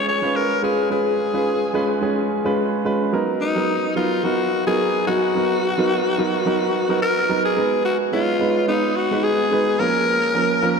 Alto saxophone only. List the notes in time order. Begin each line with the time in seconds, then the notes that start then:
0.08 C#5
0.36 A#4
0.64 G#4
0.92 G#4
3.41 D#4
3.96 F4
4.24 F#4
4.67 G#4
5.07 F#4
7.02 A#4
7.45 G#4
7.85 F#4
8.13 F4
8.68 D#4
8.96 F#4
9.24 G#4
9.79 A#4